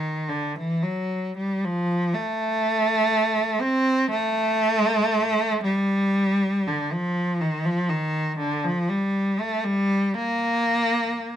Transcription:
0.00 0.28 D#3 medium
0.29 0.55 D3 medium
0.56 0.82 E3 medium
0.83 1.36 F#3 medium
1.37 1.63 G3 medium
1.65 2.15 F3 medium
2.15 3.61 A3 loud
3.61 4.11 C4 loud
4.11 5.60 A3 loud
5.64 6.66 G3 loud
6.67 6.92 D3 medium
6.92 7.41 F3 medium
7.41 7.65 D#3 medium
7.66 7.90 F3 loud
7.89 8.39 D#3 medium
8.39 8.63 D3 medium
8.64 8.89 F3 medium
8.89 9.39 G3 medium
9.39 9.64 A3 medium
9.64 10.13 G3 loud
10.14 11.36 A#3 loud

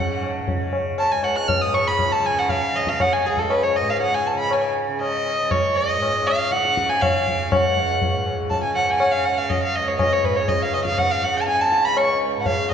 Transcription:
0.00 1.10 C#2 medium
0.00 1.65 G#2 medium
0.00 0.56 C#3 medium
0.00 0.19 F#5 loud
0.23 tabla na medium
0.48 tabla tin medium
0.48 tabla ge medium
0.56 2.19 C#3 medium
0.73 tabla na medium
0.98 1.13 A5 loud
0.98 tabla na medium
1.11 3.25 C#2 medium
1.11 1.25 G#5 loud
1.23 1.37 F#5 medium
1.23 tabla na medium
1.36 1.49 F#6 loud
1.48 1.63 F6 medium
1.48 tabla tin medium
1.48 tabla ge medium
1.61 3.80 G#2 medium
1.61 1.76 D#6 medium
1.74 1.89 C#6 loud
1.74 tabla na medium
1.88 2.13 B5 loud
1.99 tabla na medium
1.99 tabla ge medium
2.12 2.27 A5 loud
2.19 2.73 C#3 medium
2.26 2.40 G#5 loud
2.38 2.52 F#5 medium
2.49 2.78 F5 medium
2.49 tabla tin medium
2.49 tabla ge medium
2.73 4.35 C#3 medium
2.73 2.90 D#5 loud
2.73 tabla na medium
2.87 3.02 F5 medium
2.87 tabla ke medium
3.00 3.14 F#5 loud
3.00 tabla na medium
3.00 tabla ge medium
3.13 3.28 G#5 medium
3.25 5.41 C#2 medium
3.25 3.40 G#4 medium
3.25 tabla te medium
3.37 3.52 A4 medium
3.37 tabla ge medium
3.50 3.65 B4 medium
3.50 tabla na medium
3.63 3.78 C#5 medium
3.75 3.91 D#5 medium
3.75 tabla na medium
3.81 5.96 G#2 medium
3.90 4.01 F5 medium
4.00 4.16 F#5 medium
4.00 tabla na medium
4.14 4.28 G#5 medium
4.27 4.39 A5 medium
4.35 4.89 C#3 medium
4.39 4.54 B5 medium
4.51 4.64 G#5 medium
4.51 tabla na medium
4.89 6.50 C#3 medium
5.01 5.53 D#5 medium
5.01 tabla na medium
5.26 tabla na medium
5.41 7.57 C#2 medium
5.51 5.77 C#5 medium
5.51 tabla na medium
5.51 tabla ge medium
5.76 6.28 D#5 loud
5.96 8.11 G#2 medium
6.02 tabla na medium
6.27 6.53 F5 loud
6.27 tabla na medium
6.50 7.04 C#3 medium
6.50 6.91 F#5 loud
6.50 tabla te medium
6.65 tabla te medium
6.77 tabla ke medium
6.89 7.03 G#5 loud
6.89 tabla te medium
7.01 8.63 C#3 medium
7.01 7.53 F5 loud
7.01 tabla na medium
7.01 tabla ge medium
7.28 tabla ge medium
7.51 8.26 F#5 loud
7.51 tabla na loud
7.51 tabla ge loud
7.57 9.69 C#2 medium
8.02 tabla tin medium
8.02 tabla ge medium
8.12 10.23 G#2 medium
8.26 tabla na medium
8.50 8.62 A5 medium
8.50 tabla tin medium
8.50 tabla ge medium
8.63 9.17 C#3 medium
8.63 8.72 G#5 medium
8.72 8.88 F#5 loud
8.72 8.76 G#5 medium
8.72 tabla na medium
8.87 9.01 G#5 medium
8.99 9.13 F#5 medium
8.99 tabla na loud
9.11 9.26 F5 medium
9.17 10.77 C#3 medium
9.25 9.39 F#5 medium
9.25 tabla na medium
9.38 9.51 F5 medium
9.50 9.62 D#5 medium
9.50 tabla tin medium
9.50 tabla ge medium
9.63 9.77 F5 medium
9.70 11.83 C#2 medium
9.75 9.89 D#5 medium
9.88 9.99 C#5 medium
9.99 10.14 D#5 medium
9.99 tabla na medium
9.99 tabla ge medium
10.13 10.26 C#5 medium
10.23 12.36 G#2 medium
10.23 10.38 B4 medium
10.23 tabla ge medium
10.37 10.50 C#5 medium
10.48 10.63 D#5 medium
10.48 tabla tin medium
10.48 tabla ge medium
10.62 10.75 F5 medium
10.73 10.85 D#5 loud
10.73 tabla na medium
10.77 11.30 C#3 medium
10.85 11.00 F5 medium
10.85 tabla ke medium
10.98 11.12 F#5 loud
10.98 tabla na medium
10.98 tabla ge medium
11.11 11.25 F5 medium
11.22 11.38 F#5 medium
11.22 tabla te medium
11.30 12.74 C#3 medium
11.37 11.48 A5 loud
11.48 11.62 G#5 loud
11.48 tabla te medium
11.61 11.87 A5 loud
11.72 tabla te medium
11.83 12.74 C#2 medium
11.83 11.99 B5 loud
11.97 12.09 C#6 loud
11.97 tabla na loud
12.36 12.74 G#2 medium
12.36 12.47 F#5 medium
12.46 12.71 F5 loud
12.46 tabla tin medium
12.46 tabla ge medium

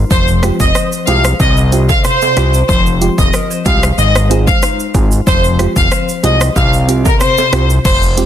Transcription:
0.00 0.18 G#3 medium
0.00 0.18 D#4 medium
0.00 1.07 F4 medium
0.00 0.75 C5 medium
0.11 0.51 F1 loud
0.11 1.40 F3 medium
0.11 0.22 C5 loud
0.11 kick loud
0.11 shaker medium
0.28 shaker medium
0.28 shaker soft
0.43 0.57 G#3 medium
0.43 3.01 C4 medium
0.43 0.57 F4 medium
0.43 0.57 G4 medium
0.43 cross-stick loud
0.43 closed hi-hat medium
0.43 shaker medium
0.60 0.72 F1 loud
0.60 0.70 D#5 medium
0.60 kick medium
0.60 shaker medium
0.75 1.72 C5 medium
0.75 cross-stick medium
0.75 shaker medium
0.92 shaker medium
1.07 1.34 C2 medium
1.07 1.21 G#3 medium
1.07 1.21 F4 medium
1.07 1.22 G4 medium
1.07 1.47 G#4 medium
1.07 1.19 F5 medium
1.07 closed hi-hat medium
1.07 shaker medium
1.25 cross-stick medium
1.25 shaker medium
1.40 1.93 C2 loud
1.40 2.69 C3 medium
1.40 1.51 D#5 medium
1.40 kick medium
1.40 shaker medium
1.57 shaker soft
1.57 shaker medium
1.72 1.86 C4 medium
1.72 1.86 F4 medium
1.72 1.86 G4 medium
1.72 3.36 C5 medium
1.72 closed hi-hat medium
1.72 shaker medium
1.89 1.99 F5 medium
1.89 kick loud
1.89 high timbale medium
1.89 shaker medium
2.04 3.65 F4 medium
2.04 2.51 C5 medium
2.04 cross-stick medium
2.04 shaker medium
2.22 high timbale medium
2.22 shaker medium
2.22 shaker soft
2.36 2.63 C2 loud
2.36 2.50 C4 medium
2.36 2.51 F4 medium
2.36 2.76 G4 medium
2.36 2.51 G4 medium
2.36 cross-stick medium
2.36 closed hi-hat medium
2.36 shaker soft
2.54 shaker medium
2.69 3.09 F1 loud
2.69 4.65 F3 medium
2.69 2.80 C5 loud
2.69 kick loud
2.69 shaker medium
2.86 shaker medium
2.86 shaker soft
3.01 3.15 G#3 medium
3.01 4.62 C4 medium
3.01 3.15 F4 medium
3.01 3.15 G4 medium
3.01 closed hi-hat medium
3.01 shaker medium
3.18 3.31 F1 loud
3.18 3.28 D#5 medium
3.18 kick medium
3.18 shaker medium
3.33 3.50 A#4 medium
3.33 cross-stick medium
3.33 shaker medium
3.50 4.05 C5 medium
3.50 shaker soft
3.50 shaker medium
3.65 3.92 C2 medium
3.65 3.79 G#3 medium
3.65 3.80 F4 medium
3.65 3.80 G4 medium
3.65 4.94 G#4 medium
3.65 3.77 F5 medium
3.65 kick loud
3.65 closed hi-hat medium
3.65 shaker medium
3.83 cross-stick loud
3.83 shaker medium
3.98 4.51 G#1 loud
3.98 5.34 G#3 medium
3.98 4.09 D#5 medium
3.98 shaker medium
4.15 cross-stick loud
4.15 shaker soft
4.15 shaker medium
4.30 4.44 C4 medium
4.30 4.44 F4 medium
4.30 4.44 G#4 medium
4.30 5.91 C5 medium
4.30 closed hi-hat medium
4.30 shaker medium
4.47 4.57 F5 medium
4.47 kick loud
4.47 shaker medium
4.62 5.34 D#4 medium
4.62 cross-stick medium
4.62 shaker medium
4.80 shaker medium
4.80 shaker soft
4.94 5.21 G#1 loud
4.94 5.08 C4 medium
4.94 6.23 F4 medium
4.94 5.08 F4 medium
4.94 5.09 G#4 loud
4.94 kick medium
4.94 closed hi-hat medium
4.94 shaker soft
5.12 shaker medium
5.27 5.67 F1 loud
5.27 6.55 F3 medium
5.27 5.38 C5 loud
5.27 kick loud
5.27 shaker medium
5.44 shaker medium
5.44 shaker soft
5.59 5.73 G#3 medium
5.59 7.20 C4 medium
5.59 5.73 F4 medium
5.59 5.73 G4 medium
5.59 cross-stick medium
5.59 closed hi-hat medium
5.59 shaker medium
5.76 5.89 F1 loud
5.76 5.86 F5 medium
5.76 kick loud
5.76 shaker medium
5.91 6.88 C5 medium
5.91 cross-stick medium
5.91 shaker medium
6.09 shaker medium
6.09 shaker soft
6.23 6.50 C2 medium
6.23 6.37 G#3 medium
6.23 6.37 F4 medium
6.23 6.38 G4 medium
6.23 6.63 G#4 medium
6.23 6.35 D#5 medium
6.23 closed hi-hat medium
6.23 shaker medium
6.41 cross-stick loud
6.41 shaker medium
6.56 7.09 C2 loud
6.56 7.92 C3 medium
6.56 6.67 F5 medium
6.56 kick medium
6.56 shaker medium
6.73 shaker soft
6.73 shaker medium
6.88 7.02 C4 medium
6.88 7.02 F4 medium
6.88 7.92 G4 medium
6.88 7.02 G4 medium
6.88 closed hi-hat medium
6.88 shaker medium
7.05 7.15 A#4 medium
7.05 kick medium
7.05 high timbale medium
7.05 shaker medium
7.20 8.26 C4 medium
7.20 7.67 C5 medium
7.20 cross-stick medium
7.20 shaker medium
7.38 high timbale medium
7.38 shaker medium
7.38 shaker soft
7.52 7.79 C2 loud
7.52 7.66 C4 medium
7.52 8.26 F4 medium
7.52 7.67 F4 medium
7.52 7.67 G4 medium
7.52 cross-stick medium
7.52 closed hi-hat medium
7.52 shaker medium
7.52 shaker soft
7.70 shaker medium
7.85 8.26 F1 loud
7.85 7.96 C5 loud
7.85 kick loud
7.85 crash loud
7.85 shaker medium
8.02 shaker medium
8.02 shaker soft
8.17 8.26 G#3 medium
8.17 8.26 C4 medium
8.17 8.26 F4 medium
8.17 8.26 G4 medium
8.17 closed hi-hat medium
8.17 shaker medium

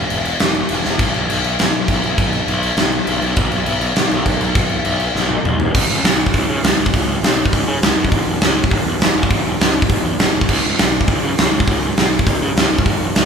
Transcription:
0.10 0.33 E1 medium
0.10 crash medium
0.25 crash medium
0.40 0.63 E1 medium
0.40 snare loud
0.40 crash medium
0.55 crash medium
0.69 0.81 E1 medium
0.69 crash medium
0.85 0.97 E1 medium
0.85 snare medium
0.99 1.10 B1 loud
0.99 kick loud
0.99 crash medium
1.14 1.26 B1 medium
1.14 crash soft
1.30 1.40 B1 loud
1.30 crash medium
1.44 1.55 B1 medium
1.44 crash medium
1.59 1.70 B1 medium
1.59 snare loud
1.59 crash medium
1.73 1.84 B1 medium
1.73 crash medium
1.88 1.99 B1 medium
1.88 kick medium
1.88 crash medium
2.03 2.14 B1 medium
2.03 crash medium
2.18 2.40 B1 medium
2.18 kick loud
2.18 crash medium
2.33 crash medium
2.48 2.70 B1 medium
2.48 crash medium
2.63 crash medium
2.77 2.99 B1 medium
2.77 snare loud
2.77 crash medium
2.92 crash medium
3.07 3.18 B1 medium
3.07 crash medium
3.22 3.33 B1 medium
3.22 crash medium
3.36 3.48 B1 loud
3.36 kick loud
3.36 crash medium
3.51 3.62 B1 medium
3.51 crash medium
3.65 3.77 B1 medium
3.65 crash medium
3.80 3.92 B1 loud
3.80 crash medium
3.95 4.07 B1 medium
3.95 snare loud
3.95 crash medium
4.11 4.22 B1 medium
4.11 crash medium
4.26 4.37 B1 medium
4.26 kick medium
4.26 crash medium
4.40 4.52 B1 loud
4.40 crash medium
4.55 4.77 B1 medium
4.55 kick loud
4.55 crash medium
4.69 crash soft
4.85 5.07 B1 medium
4.85 crash medium
5.00 crash medium
5.15 5.37 B1 medium
5.15 snare medium
5.30 high tom medium
5.44 5.56 B1 loud
5.44 mid tom medium
5.60 5.71 D#2 medium
5.60 floor tom medium
5.75 5.84 C#2 loud
5.75 kick loud
5.75 crash loud
5.90 5.99 C#2 medium
6.04 6.23 B1 loud
6.04 snare loud
6.04 open hi-hat medium
6.26 kick medium
6.34 6.44 C#2 medium
6.34 kick loud
6.34 open hi-hat medium
6.49 6.58 C#3 medium
6.64 6.73 C#2 loud
6.64 snare loud
6.64 open hi-hat medium
6.79 6.88 C#2 medium
6.86 kick loud
6.94 7.03 C#2 loud
6.94 kick loud
6.94 open hi-hat medium
7.07 7.16 C#2 medium
7.22 7.41 B1 medium
7.22 snare loud
7.22 open hi-hat medium
7.45 kick medium
7.53 7.62 C#2 medium
7.53 kick loud
7.53 open hi-hat medium
7.68 7.77 C#3 medium
7.82 7.92 C#2 loud
7.82 snare loud
7.82 open hi-hat medium
7.97 8.06 F#2 medium
8.05 kick medium
8.12 8.21 E1 loud
8.12 kick loud
8.12 open hi-hat medium
8.27 8.36 E1 medium
8.41 8.60 C#2 medium
8.41 snare loud
8.41 open hi-hat medium
8.64 kick medium
8.71 8.81 E1 loud
8.71 kick loud
8.71 open hi-hat medium
8.85 8.95 E2 medium
9.00 9.09 E1 medium
9.00 snare loud
9.00 open hi-hat medium
9.16 9.25 E1 loud
9.23 kick loud
9.31 9.40 E1 loud
9.31 kick loud
9.31 open hi-hat medium
9.45 9.54 E1 medium
9.60 9.78 C#2 loud
9.60 snare loud
9.60 open hi-hat medium
9.82 kick loud
9.89 9.99 E1 medium
9.89 kick loud
9.89 open hi-hat medium
10.05 10.14 E2 medium
10.19 10.29 E1 loud
10.19 snare loud
10.19 open hi-hat medium
10.35 10.44 E1 medium
10.41 kick medium
10.49 10.58 C#2 loud
10.49 kick loud
10.49 crash loud
10.65 10.74 C#2 medium
10.79 10.97 B1 medium
10.79 snare loud
10.79 open hi-hat medium
11.01 kick medium
11.07 11.17 C#2 loud
11.07 kick loud
11.07 open hi-hat medium
11.23 11.32 C#3 medium
11.38 11.48 C#2 loud
11.38 snare loud
11.38 open hi-hat medium
11.52 11.61 C#2 loud
11.60 kick loud
11.67 11.77 C#2 loud
11.67 kick loud
11.67 open hi-hat medium
11.82 11.91 C#2 medium
11.97 12.15 B1 medium
11.97 snare loud
11.97 open hi-hat medium
12.19 kick loud
12.27 12.36 C#2 loud
12.27 kick loud
12.27 open hi-hat medium
12.42 12.51 C#3 medium
12.57 12.65 C#2 loud
12.57 snare loud
12.57 open hi-hat medium
12.72 12.81 C#2 medium
12.79 kick medium
12.86 12.95 E1 loud
12.86 kick loud
12.86 open hi-hat medium
13.01 13.10 E1 medium
13.15 13.25 C#2 medium
13.15 snare loud
13.15 open hi-hat medium

